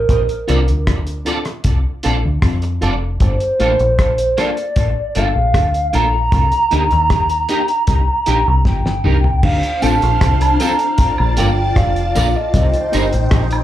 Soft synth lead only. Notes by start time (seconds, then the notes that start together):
Already playing: A#4
3.22 C5
4.40 D5
5.18 F5
5.95 A#5
8.66 G5
9.44 F5
9.82 A5
10.60 A#5
11.37 G5
11.76 F5
12.36 D#5